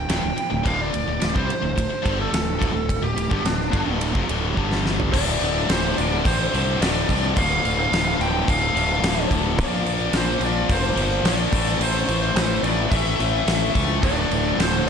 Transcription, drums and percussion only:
0.09 snare loud
0.09 ride medium
0.38 ride medium
0.66 kick loud
0.66 ride medium
0.94 ride medium
1.22 snare loud
1.22 ride medium
1.36 kick loud
1.50 ride medium
1.78 kick medium
1.78 ride medium
2.06 kick loud
2.06 ride medium
2.34 snare loud
2.34 ride loud
2.62 kick loud
2.62 ride medium
2.89 kick loud
2.89 ride medium
3.18 ride medium
3.31 kick loud
3.45 snare loud
3.45 ride loud
3.61 snare soft
3.73 kick loud
3.73 ride medium
4.01 ride medium
4.15 kick loud
4.29 ride medium
4.57 kick medium
4.72 snare medium
4.86 snare medium
5.00 floor tom medium
5.14 kick loud
5.14 crash loud
5.14 crash medium
5.41 crash medium
5.69 snare loud
5.69 crash medium
5.98 crash medium
6.25 kick loud
6.25 crash medium
6.54 crash medium
6.82 snare loud
6.82 crash medium
7.09 kick medium
7.09 crash medium
7.37 kick loud
7.37 crash medium
7.65 crash medium
7.93 snare loud
7.93 crash medium
8.21 crash medium
8.48 kick loud
8.48 crash medium
8.77 crash medium
9.04 snare loud
9.04 crash medium
9.31 kick medium
9.31 crash medium
9.59 kick loud
9.59 crash medium
9.86 crash medium
10.13 snare loud
10.13 crash medium
10.41 crash medium
10.70 kick loud
10.70 crash medium
10.97 crash medium
11.25 snare loud
11.25 crash medium
11.53 kick loud
11.53 crash loud
11.81 crash medium
12.09 crash medium
12.36 snare loud
12.36 crash medium
12.64 crash medium
12.92 kick loud
12.92 crash medium
13.20 crash medium
13.48 snare loud
13.48 crash medium
13.75 kick medium
13.75 crash medium
14.03 kick loud
14.03 crash medium
14.31 crash medium
14.60 snare loud
14.60 crash medium

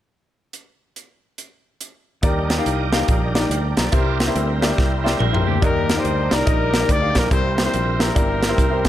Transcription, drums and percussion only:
0.53 closed hi-hat medium
0.96 closed hi-hat soft
1.38 closed hi-hat medium
1.81 closed hi-hat medium
2.23 kick loud
2.23 closed hi-hat medium
2.50 snare medium
2.50 closed hi-hat medium
2.66 closed hi-hat medium
2.93 snare loud
2.93 closed hi-hat medium
3.08 kick medium
3.08 closed hi-hat medium
3.35 snare medium
3.35 closed hi-hat medium
3.51 closed hi-hat medium
3.77 snare medium
3.77 closed hi-hat medium
3.92 kick loud
3.92 closed hi-hat medium
4.20 snare loud
4.20 closed hi-hat medium
4.36 closed hi-hat medium
4.62 snare loud
4.62 closed hi-hat medium
4.78 kick medium
4.78 snare medium
5.06 snare medium
5.20 mid tom medium
5.34 floor tom medium
5.62 kick medium
5.62 closed hi-hat medium
5.89 snare medium
5.89 closed hi-hat medium
6.05 closed hi-hat medium
6.31 snare medium
6.31 closed hi-hat medium
6.47 kick loud
6.47 closed hi-hat medium
6.74 snare loud
6.74 closed hi-hat medium
6.89 kick medium
6.89 closed hi-hat medium
7.15 kick medium
7.15 snare medium
7.15 closed hi-hat medium
7.31 kick loud
7.31 closed hi-hat medium
7.58 snare medium
7.58 closed hi-hat medium
7.74 closed hi-hat medium
8.00 snare loud
8.00 closed hi-hat medium
8.16 kick loud
8.16 closed hi-hat medium
8.43 snare loud
8.43 closed hi-hat medium
8.58 kick medium
8.58 closed hi-hat medium
8.85 kick medium
8.85 snare loud
8.85 closed hi-hat medium

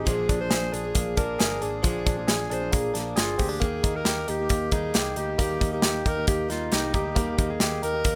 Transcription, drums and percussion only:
0.07 kick medium
0.07 closed hi-hat medium
0.29 kick medium
0.29 closed hi-hat medium
0.51 snare loud
0.51 closed hi-hat loud
0.74 closed hi-hat medium
0.95 kick loud
0.95 closed hi-hat loud
1.17 kick medium
1.17 closed hi-hat medium
1.40 snare loud
1.40 closed hi-hat medium
1.62 closed hi-hat medium
1.84 kick loud
1.84 closed hi-hat medium
2.06 kick loud
2.06 closed hi-hat medium
2.28 snare loud
2.28 closed hi-hat loud
2.51 closed hi-hat medium
2.73 kick loud
2.73 closed hi-hat loud
2.95 snare soft
2.95 closed hi-hat medium
3.17 snare loud
3.17 closed hi-hat loud
3.39 kick medium
3.39 open hi-hat medium
3.62 kick medium
3.62 closed hi-hat medium
3.84 kick loud
3.84 closed hi-hat medium
4.05 snare loud
4.05 closed hi-hat loud
4.28 closed hi-hat medium
4.49 kick loud
4.49 closed hi-hat loud
4.71 kick medium
4.71 closed hi-hat medium
4.94 snare loud
4.94 closed hi-hat medium
5.16 closed hi-hat medium
5.39 kick medium
5.39 closed hi-hat medium
5.61 kick medium
5.61 closed hi-hat medium
5.82 snare loud
5.82 closed hi-hat loud
6.06 kick medium
6.06 closed hi-hat medium
6.27 kick loud
6.27 closed hi-hat loud
6.50 snare soft
6.50 closed hi-hat medium
6.72 snare loud
6.72 closed hi-hat medium
6.94 kick medium
6.94 closed hi-hat medium
7.16 kick loud
7.16 closed hi-hat medium
7.38 kick loud
7.38 closed hi-hat medium
7.60 snare loud
7.60 closed hi-hat loud
7.83 closed hi-hat medium
8.04 kick loud
8.04 closed hi-hat loud

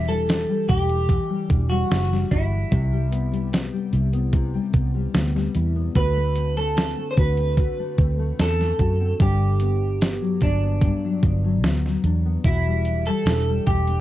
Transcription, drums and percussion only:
0.09 closed hi-hat soft
0.29 snare medium
0.29 closed hi-hat medium
0.69 kick medium
0.69 closed hi-hat medium
0.89 closed hi-hat soft
1.09 kick medium
1.09 closed hi-hat medium
1.50 kick medium
1.50 closed hi-hat medium
1.91 snare loud
1.91 closed hi-hat medium
2.13 snare soft
2.31 kick medium
2.31 closed hi-hat medium
2.72 kick loud
2.72 closed hi-hat loud
3.12 closed hi-hat medium
3.34 closed hi-hat soft
3.53 snare medium
3.53 closed hi-hat medium
3.93 closed hi-hat medium
4.13 closed hi-hat soft
4.33 kick medium
4.33 closed hi-hat medium
4.74 kick medium
4.74 closed hi-hat medium
5.15 snare medium
5.15 closed hi-hat medium
5.37 snare soft
5.55 closed hi-hat medium
5.95 kick loud
5.95 closed hi-hat medium
6.36 closed hi-hat medium
6.57 closed hi-hat soft
6.77 snare medium
6.77 closed hi-hat medium
7.17 kick medium
7.17 closed hi-hat medium
7.37 closed hi-hat soft
7.57 kick medium
7.57 closed hi-hat medium
7.98 kick medium
7.98 closed hi-hat medium
8.39 snare medium
8.39 closed hi-hat medium
8.61 snare soft
8.79 kick medium
8.79 closed hi-hat medium
9.20 kick loud
9.20 closed hi-hat medium
9.60 closed hi-hat medium
10.02 snare loud
10.02 closed hi-hat medium
10.41 kick medium
10.41 closed hi-hat medium
10.82 kick medium
10.82 closed hi-hat medium
11.23 kick medium
11.23 closed hi-hat medium
11.64 snare medium
11.64 closed hi-hat medium
11.86 snare soft
12.04 closed hi-hat medium
12.45 kick loud
12.45 closed hi-hat loud
12.85 closed hi-hat medium
13.06 closed hi-hat soft
13.26 snare medium
13.26 closed hi-hat medium
13.67 kick medium
13.67 closed hi-hat medium
13.87 closed hi-hat soft

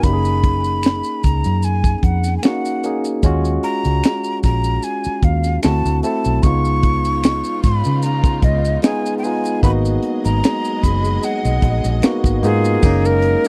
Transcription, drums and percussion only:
0.03 kick medium
0.03 closed hi-hat medium
0.03 maracas medium
0.25 closed hi-hat soft
0.25 maracas soft
0.44 kick medium
0.44 closed hi-hat medium
0.64 closed hi-hat soft
0.64 maracas soft
0.83 finger snap medium
0.83 snare loud
0.83 closed hi-hat medium
0.83 maracas medium
1.04 closed hi-hat soft
1.04 maracas soft
1.24 kick medium
1.24 closed hi-hat medium
1.24 maracas soft
1.44 closed hi-hat soft
1.44 maracas soft
1.63 closed hi-hat medium
1.63 maracas soft
1.84 kick medium
1.84 closed hi-hat soft
1.84 maracas soft
2.03 kick medium
2.03 closed hi-hat medium
2.24 snare soft
2.24 closed hi-hat soft
2.24 maracas soft
2.43 finger snap medium
2.43 snare loud
2.43 closed hi-hat medium
2.43 maracas medium
2.65 closed hi-hat soft
2.65 maracas soft
2.83 closed hi-hat medium
2.83 maracas soft
3.04 closed hi-hat soft
3.04 maracas soft
3.23 kick medium
3.23 closed hi-hat medium
3.23 maracas medium
3.45 closed hi-hat soft
3.45 maracas soft
3.63 closed hi-hat medium
3.85 closed hi-hat medium
3.85 maracas soft
4.04 finger snap medium
4.04 snare medium
4.04 closed hi-hat medium
4.04 maracas medium
4.24 closed hi-hat soft
4.24 maracas soft
4.43 kick medium
4.43 snare soft
4.43 closed hi-hat medium
4.43 maracas soft
4.64 closed hi-hat soft
4.64 maracas soft
4.83 closed hi-hat medium
4.83 maracas medium
5.04 closed hi-hat soft
5.04 maracas soft
5.23 kick medium
5.23 closed hi-hat medium
5.44 snare soft
5.44 closed hi-hat soft
5.44 maracas soft
5.63 finger snap medium
5.63 snare loud
5.63 closed hi-hat medium
5.63 maracas medium
5.86 closed hi-hat soft
5.86 maracas soft
6.03 closed hi-hat medium
6.03 maracas soft
6.24 closed hi-hat soft
6.24 maracas soft
6.43 kick medium
6.43 closed hi-hat medium
6.43 maracas medium
6.65 closed hi-hat soft
6.65 maracas soft
6.83 kick medium
6.83 closed hi-hat medium
7.05 closed hi-hat soft
7.05 maracas soft
7.24 finger snap medium
7.24 snare loud
7.24 closed hi-hat medium
7.24 maracas medium
7.44 closed hi-hat soft
7.44 maracas soft
7.64 kick medium
7.64 closed hi-hat medium
7.64 maracas soft
7.84 closed hi-hat soft
7.84 maracas soft
8.02 closed hi-hat medium
8.02 maracas medium
8.24 kick loud
8.24 closed hi-hat soft
8.24 maracas soft
8.42 kick medium
8.42 closed hi-hat medium
8.65 snare soft
8.65 closed hi-hat soft
8.65 maracas soft
8.82 finger snap medium
8.82 snare loud
8.82 closed hi-hat medium
8.82 maracas medium
9.06 closed hi-hat soft
9.06 maracas medium
9.23 open hi-hat soft
9.23 maracas soft
9.44 closed hi-hat soft
9.44 maracas soft
9.63 kick medium
9.63 closed hi-hat medium
9.63 maracas medium
9.85 closed hi-hat soft
9.85 maracas soft
10.02 closed hi-hat medium
10.25 closed hi-hat medium
10.25 maracas soft
10.44 finger snap medium
10.44 snare loud
10.44 closed hi-hat medium
10.44 maracas medium
10.65 closed hi-hat soft
10.65 maracas soft
10.83 kick medium
10.83 snare soft
10.83 closed hi-hat medium
10.83 maracas soft
11.05 closed hi-hat soft
11.05 maracas soft
11.23 closed hi-hat medium
11.23 maracas medium
11.45 closed hi-hat soft
11.45 maracas soft
11.62 kick medium
11.62 closed hi-hat medium
11.84 snare soft
11.84 closed hi-hat medium
11.84 maracas soft
12.02 finger snap medium
12.02 snare loud
12.02 closed hi-hat medium
12.02 maracas medium
12.24 kick medium
12.24 closed hi-hat soft
12.24 maracas medium
12.43 closed hi-hat medium
12.43 maracas soft
12.64 closed hi-hat soft
12.64 maracas medium
12.83 kick loud
12.83 crash medium
12.83 maracas medium
13.05 maracas soft
13.22 closed hi-hat medium
13.44 closed hi-hat medium
13.44 maracas soft

